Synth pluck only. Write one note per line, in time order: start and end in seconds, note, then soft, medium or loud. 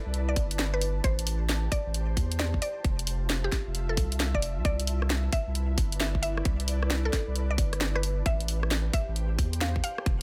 0.29 0.35 D5 medium
0.74 0.86 B4 medium
1.04 1.21 C5 loud
1.72 1.89 D5 medium
2.39 2.52 D5 medium
2.62 2.82 D5 medium
3.44 3.62 G4 loud
3.89 3.96 A4 medium
4.35 4.47 D5 medium
4.65 4.82 D5 loud
5.33 5.49 E5 medium
6.00 6.13 E5 medium
6.22 6.43 E5 loud
7.05 7.23 A4 loud
7.50 7.57 D5 medium
7.96 8.07 B4 medium
8.26 8.43 E5 loud
8.94 9.10 E5 medium
9.61 9.74 F5 medium
9.84 10.04 F5 loud